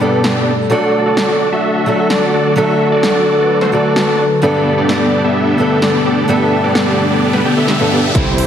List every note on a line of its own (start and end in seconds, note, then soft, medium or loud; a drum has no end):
0.00 0.67 G2 medium
0.00 0.67 B2 medium
0.00 0.67 G3 medium
0.00 0.68 G3 medium
0.00 0.67 A3 medium
0.00 0.68 B3 medium
0.00 0.22 B3 medium
0.00 0.67 D4 medium
0.00 0.22 D4 medium
0.00 0.68 D4 medium
0.00 0.22 G4 medium
0.00 2.53 A4 medium
0.00 0.22 A4 medium
0.00 0.69 A4 medium
0.00 0.22 D5 medium
0.24 0.52 B3 medium
0.24 0.52 D4 medium
0.24 0.52 G4 medium
0.24 0.52 A4 medium
0.24 0.52 D5 medium
0.24 snare loud
0.70 8.11 D3 medium
0.70 1.84 F#3 loud
0.70 4.39 F#3 medium
0.70 1.84 A3 medium
0.70 4.39 A3 medium
0.70 1.85 D4 medium
0.70 1.03 F#4 medium
0.70 4.39 F#4 medium
0.70 1.03 A4 medium
0.70 1.85 A4 loud
0.70 1.03 D5 medium
1.06 1.49 F#4 medium
1.06 1.49 A4 medium
1.06 1.49 D5 medium
1.17 snare loud
1.52 2.08 F#4 medium
1.52 2.08 A4 medium
1.52 2.08 E5 medium
1.86 2.54 F#3 medium
1.86 2.54 A3 medium
1.86 2.54 D4 medium
1.86 2.55 A4 medium
2.10 2.31 F#4 medium
2.10 2.31 A4 medium
2.10 2.31 D5 medium
2.10 snare loud
2.34 2.54 F#4 medium
2.34 2.54 A4 medium
2.34 2.54 D5 medium
2.56 3.70 F#3 medium
2.56 3.70 A3 medium
2.56 3.71 D4 medium
2.56 2.89 F#4 medium
2.56 2.89 A4 medium
2.56 3.71 A4 loud
2.56 4.41 B4 medium
2.56 2.89 E5 loud
2.92 3.36 F#4 medium
2.92 3.36 A4 medium
2.92 3.36 D5 loud
3.03 snare loud
3.38 3.59 F#4 medium
3.38 3.59 A4 medium
3.38 3.59 D5 medium
3.61 3.70 F#4 loud
3.61 3.70 A4 medium
3.61 3.70 C5 loud
3.61 snare soft
3.72 4.40 F#3 medium
3.72 4.40 A3 medium
3.72 4.40 D4 medium
3.72 3.94 F#4 medium
3.72 3.94 A4 medium
3.72 4.41 A4 medium
3.72 3.94 D5 medium
3.96 4.24 F#4 medium
3.96 4.24 A4 medium
3.96 4.24 D5 medium
3.96 snare loud
4.42 5.56 G2 loud
4.42 5.56 G3 medium
4.42 8.11 A3 medium
4.42 5.56 B3 medium
4.42 4.75 B3 medium
4.42 8.11 B3 medium
4.42 4.75 D4 medium
4.42 5.57 D4 medium
4.42 4.75 G4 medium
4.42 8.11 G4 medium
4.42 4.75 A4 medium
4.42 8.11 A4 loud
4.42 5.57 A4 loud
4.42 4.75 D5 medium
4.42 riser medium
4.78 5.22 B3 medium
4.78 5.22 D4 medium
4.78 5.22 G4 medium
4.78 5.22 A4 medium
4.78 5.22 D5 loud
4.89 snare loud
5.24 5.80 B3 medium
5.24 5.80 D4 medium
5.24 5.80 G4 medium
5.24 5.80 A4 medium
5.24 5.80 E5 medium
5.58 6.26 G2 medium
5.58 6.26 G3 medium
5.58 6.26 B3 medium
5.58 6.27 D4 medium
5.58 6.27 A4 medium
5.82 6.03 B3 medium
5.82 6.03 D4 medium
5.82 6.03 G4 medium
5.82 6.03 A4 medium
5.82 6.03 D5 loud
5.82 snare loud
6.06 6.26 B3 medium
6.06 6.26 D4 medium
6.06 6.26 G4 medium
6.06 6.26 A4 medium
6.06 6.26 D5 medium
6.28 7.42 G2 loud
6.28 7.42 G3 medium
6.28 6.61 B3 medium
6.28 7.43 B3 medium
6.28 6.61 D4 medium
6.28 7.43 D4 medium
6.28 6.61 G4 medium
6.28 6.61 A4 medium
6.28 7.43 A4 loud
6.28 6.61 E5 loud
6.64 7.08 B3 loud
6.64 7.08 D4 medium
6.64 7.08 G4 medium
6.64 7.08 A4 medium
6.64 7.08 D5 loud
6.75 snare loud
7.10 7.31 B3 medium
7.10 7.31 D4 medium
7.10 7.31 G4 medium
7.10 7.31 A4 medium
7.10 7.31 D5 medium
7.33 7.42 B3 medium
7.33 7.42 D4 medium
7.33 7.42 G4 medium
7.33 7.42 A4 medium
7.33 7.42 B4 loud
7.33 snare soft
7.45 7.54 B3 loud
7.45 7.54 D4 medium
7.45 7.54 G4 medium
7.45 7.54 A4 medium
7.45 7.54 G5 loud
7.57 7.89 B3 medium
7.57 7.89 D4 medium
7.57 7.89 G4 medium
7.57 7.89 A4 medium
7.57 7.89 E5 loud
7.68 snare loud
7.79 8.12 G2 medium
7.79 8.12 G3 medium
7.79 8.12 B3 medium
7.79 8.12 D4 medium
7.79 8.13 A4 medium
7.92 8.02 B3 loud
7.92 8.02 D4 loud
7.92 8.02 G4 medium
7.92 8.02 A4 medium
7.92 8.02 D5 loud
8.03 8.12 B3 medium
8.03 8.12 D4 medium
8.03 8.12 G4 medium
8.03 8.12 A4 medium
8.03 8.12 E5 loud
8.14 8.47 C2 medium
8.14 8.47 C3 loud
8.14 8.47 C3 medium
8.14 8.47 E3 medium
8.14 8.47 G3 loud
8.14 8.47 G3 medium
8.14 8.47 C4 medium
8.14 8.47 E4 medium
8.14 8.47 G4 medium
8.14 8.47 C5 medium
8.14 8.47 C5 loud
8.14 kick loud
8.14 snare soft
8.14 closed hi-hat medium
8.14 riser medium
8.38 open hi-hat loud